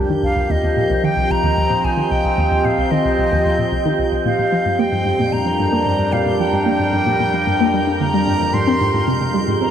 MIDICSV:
0, 0, Header, 1, 5, 480
1, 0, Start_track
1, 0, Tempo, 535714
1, 1892, Time_signature, 4, 2, 24, 8
1, 8697, End_track
2, 0, Start_track
2, 0, Title_t, "Synth texture"
2, 0, Program_c, 0, 99
2, 0, Note_on_c, 0, 91, 81
2, 8697, Note_off_c, 0, 91, 0
2, 8697, End_track
3, 0, Start_track
3, 0, Title_t, "Flute"
3, 0, Program_c, 1, 73
3, 216, Note_on_c, 1, 77, 86
3, 455, Note_on_c, 1, 75, 84
3, 469, Note_off_c, 1, 77, 0
3, 936, Note_on_c, 1, 79, 91
3, 949, Note_off_c, 1, 75, 0
3, 1176, Note_on_c, 1, 82, 104
3, 1189, Note_off_c, 1, 79, 0
3, 1653, Note_on_c, 1, 80, 94
3, 1666, Note_off_c, 1, 82, 0
3, 1893, Note_on_c, 1, 79, 91
3, 1907, Note_off_c, 1, 80, 0
3, 2375, Note_on_c, 1, 77, 89
3, 2389, Note_off_c, 1, 79, 0
3, 2610, Note_on_c, 1, 75, 85
3, 2623, Note_off_c, 1, 77, 0
3, 3571, Note_off_c, 1, 75, 0
3, 3818, Note_on_c, 1, 77, 81
3, 4296, Note_on_c, 1, 79, 83
3, 4309, Note_off_c, 1, 77, 0
3, 4773, Note_on_c, 1, 82, 88
3, 4786, Note_off_c, 1, 79, 0
3, 5489, Note_on_c, 1, 77, 83
3, 5502, Note_off_c, 1, 82, 0
3, 5724, Note_off_c, 1, 77, 0
3, 5729, Note_on_c, 1, 79, 98
3, 7135, Note_off_c, 1, 79, 0
3, 7170, Note_on_c, 1, 82, 96
3, 7649, Note_on_c, 1, 84, 97
3, 7662, Note_off_c, 1, 82, 0
3, 8369, Note_off_c, 1, 84, 0
3, 8619, Note_on_c, 1, 82, 84
3, 8697, Note_off_c, 1, 82, 0
3, 8697, End_track
4, 0, Start_track
4, 0, Title_t, "Analog synth pad"
4, 0, Program_c, 2, 89
4, 0, Note_on_c, 2, 53, 78
4, 0, Note_on_c, 2, 67, 76
4, 0, Note_on_c, 2, 70, 81
4, 326, Note_on_c, 2, 60, 83
4, 457, Note_on_c, 2, 72, 71
4, 926, Note_off_c, 2, 70, 0
4, 1049, Note_on_c, 2, 75, 79
4, 3808, Note_on_c, 2, 41, 80
4, 3812, Note_off_c, 2, 53, 0
4, 3812, Note_off_c, 2, 75, 0
4, 4150, Note_on_c, 2, 55, 76
4, 4335, Note_on_c, 2, 62, 85
4, 4666, Note_on_c, 2, 70, 80
4, 4952, Note_off_c, 2, 72, 0
4, 5348, Note_off_c, 2, 60, 0
4, 7651, Note_off_c, 2, 62, 0
4, 7653, Note_off_c, 2, 55, 0
4, 7858, Note_on_c, 2, 56, 80
4, 7978, Note_on_c, 2, 72, 74
4, 8556, Note_on_c, 2, 63, 75
4, 8697, Note_off_c, 2, 41, 0
4, 8697, Note_off_c, 2, 56, 0
4, 8697, Note_off_c, 2, 63, 0
4, 8697, Note_off_c, 2, 67, 0
4, 8697, Note_off_c, 2, 70, 0
4, 8697, Note_off_c, 2, 72, 0
4, 8697, End_track
5, 0, Start_track
5, 0, Title_t, "Synth arpeggio sound"
5, 0, Program_c, 3, 84
5, 88, Note_on_c, 3, 51, 94
5, 122, Note_off_c, 3, 51, 0
5, 207, Note_on_c, 3, 36, 70
5, 291, Note_off_c, 3, 36, 0
5, 327, Note_on_c, 3, 36, 72
5, 384, Note_off_c, 3, 36, 0
5, 447, Note_on_c, 3, 39, 92
5, 504, Note_off_c, 3, 39, 0
5, 568, Note_on_c, 3, 39, 71
5, 652, Note_off_c, 3, 39, 0
5, 687, Note_on_c, 3, 46, 75
5, 722, Note_off_c, 3, 46, 0
5, 808, Note_on_c, 3, 36, 75
5, 864, Note_off_c, 3, 36, 0
5, 928, Note_on_c, 3, 51, 93
5, 963, Note_off_c, 3, 51, 0
5, 1048, Note_on_c, 3, 36, 74
5, 1131, Note_off_c, 3, 36, 0
5, 1169, Note_on_c, 3, 36, 73
5, 1225, Note_off_c, 3, 36, 0
5, 1287, Note_on_c, 3, 39, 93
5, 1344, Note_off_c, 3, 39, 0
5, 1410, Note_on_c, 3, 39, 76
5, 1492, Note_off_c, 3, 39, 0
5, 1527, Note_on_c, 3, 46, 75
5, 1562, Note_off_c, 3, 46, 0
5, 1649, Note_on_c, 3, 36, 72
5, 1705, Note_off_c, 3, 36, 0
5, 1768, Note_on_c, 3, 51, 97
5, 1803, Note_off_c, 3, 51, 0
5, 1890, Note_on_c, 3, 36, 82
5, 1973, Note_off_c, 3, 36, 0
5, 2012, Note_on_c, 3, 36, 70
5, 2066, Note_off_c, 3, 36, 0
5, 2133, Note_on_c, 3, 39, 93
5, 2187, Note_off_c, 3, 39, 0
5, 2252, Note_on_c, 3, 39, 74
5, 2333, Note_off_c, 3, 39, 0
5, 2375, Note_on_c, 3, 46, 77
5, 2406, Note_off_c, 3, 46, 0
5, 2492, Note_on_c, 3, 36, 72
5, 2546, Note_off_c, 3, 36, 0
5, 2612, Note_on_c, 3, 51, 99
5, 2645, Note_off_c, 3, 51, 0
5, 2734, Note_on_c, 3, 36, 72
5, 2814, Note_off_c, 3, 36, 0
5, 2855, Note_on_c, 3, 36, 78
5, 2908, Note_off_c, 3, 36, 0
5, 2975, Note_on_c, 3, 39, 97
5, 3028, Note_off_c, 3, 39, 0
5, 3095, Note_on_c, 3, 39, 73
5, 3175, Note_off_c, 3, 39, 0
5, 3214, Note_on_c, 3, 46, 73
5, 3246, Note_off_c, 3, 46, 0
5, 3333, Note_on_c, 3, 36, 78
5, 3387, Note_off_c, 3, 36, 0
5, 3454, Note_on_c, 3, 51, 98
5, 3486, Note_off_c, 3, 51, 0
5, 3573, Note_on_c, 3, 36, 72
5, 3654, Note_off_c, 3, 36, 0
5, 3693, Note_on_c, 3, 36, 72
5, 3747, Note_off_c, 3, 36, 0
5, 3814, Note_on_c, 3, 46, 102
5, 3867, Note_off_c, 3, 46, 0
5, 3934, Note_on_c, 3, 46, 70
5, 4014, Note_off_c, 3, 46, 0
5, 4054, Note_on_c, 3, 53, 76
5, 4086, Note_off_c, 3, 53, 0
5, 4175, Note_on_c, 3, 43, 74
5, 4228, Note_off_c, 3, 43, 0
5, 4292, Note_on_c, 3, 58, 94
5, 4325, Note_off_c, 3, 58, 0
5, 4412, Note_on_c, 3, 43, 74
5, 4493, Note_off_c, 3, 43, 0
5, 4532, Note_on_c, 3, 43, 74
5, 4586, Note_off_c, 3, 43, 0
5, 4654, Note_on_c, 3, 46, 94
5, 4707, Note_off_c, 3, 46, 0
5, 4772, Note_on_c, 3, 46, 77
5, 4853, Note_off_c, 3, 46, 0
5, 4892, Note_on_c, 3, 53, 73
5, 4925, Note_off_c, 3, 53, 0
5, 5012, Note_on_c, 3, 43, 75
5, 5066, Note_off_c, 3, 43, 0
5, 5130, Note_on_c, 3, 58, 97
5, 5164, Note_off_c, 3, 58, 0
5, 5251, Note_on_c, 3, 43, 80
5, 5333, Note_off_c, 3, 43, 0
5, 5369, Note_on_c, 3, 43, 73
5, 5425, Note_off_c, 3, 43, 0
5, 5493, Note_on_c, 3, 46, 95
5, 5547, Note_off_c, 3, 46, 0
5, 5611, Note_on_c, 3, 46, 76
5, 5693, Note_off_c, 3, 46, 0
5, 5733, Note_on_c, 3, 53, 81
5, 5765, Note_off_c, 3, 53, 0
5, 5851, Note_on_c, 3, 43, 74
5, 5906, Note_off_c, 3, 43, 0
5, 5967, Note_on_c, 3, 58, 93
5, 6002, Note_off_c, 3, 58, 0
5, 6090, Note_on_c, 3, 43, 73
5, 6172, Note_off_c, 3, 43, 0
5, 6210, Note_on_c, 3, 43, 77
5, 6265, Note_off_c, 3, 43, 0
5, 6329, Note_on_c, 3, 46, 96
5, 6385, Note_off_c, 3, 46, 0
5, 6453, Note_on_c, 3, 46, 75
5, 6534, Note_off_c, 3, 46, 0
5, 6575, Note_on_c, 3, 53, 70
5, 6606, Note_off_c, 3, 53, 0
5, 6694, Note_on_c, 3, 43, 80
5, 6748, Note_off_c, 3, 43, 0
5, 6815, Note_on_c, 3, 58, 95
5, 6846, Note_off_c, 3, 58, 0
5, 6934, Note_on_c, 3, 55, 74
5, 6987, Note_off_c, 3, 55, 0
5, 7053, Note_on_c, 3, 62, 73
5, 7085, Note_off_c, 3, 62, 0
5, 7172, Note_on_c, 3, 50, 81
5, 7254, Note_off_c, 3, 50, 0
5, 7293, Note_on_c, 3, 55, 95
5, 7347, Note_off_c, 3, 55, 0
5, 7414, Note_on_c, 3, 43, 71
5, 7467, Note_off_c, 3, 43, 0
5, 7533, Note_on_c, 3, 53, 73
5, 7565, Note_off_c, 3, 53, 0
5, 7650, Note_on_c, 3, 44, 83
5, 7706, Note_off_c, 3, 44, 0
5, 7771, Note_on_c, 3, 60, 93
5, 7804, Note_off_c, 3, 60, 0
5, 7893, Note_on_c, 3, 44, 71
5, 7974, Note_off_c, 3, 44, 0
5, 8012, Note_on_c, 3, 44, 74
5, 8066, Note_off_c, 3, 44, 0
5, 8133, Note_on_c, 3, 48, 95
5, 8187, Note_off_c, 3, 48, 0
5, 8252, Note_on_c, 3, 48, 73
5, 8333, Note_off_c, 3, 48, 0
5, 8371, Note_on_c, 3, 55, 75
5, 8404, Note_off_c, 3, 55, 0
5, 8494, Note_on_c, 3, 44, 74
5, 8548, Note_off_c, 3, 44, 0
5, 8615, Note_on_c, 3, 60, 92
5, 8646, Note_off_c, 3, 60, 0
5, 8697, End_track
0, 0, End_of_file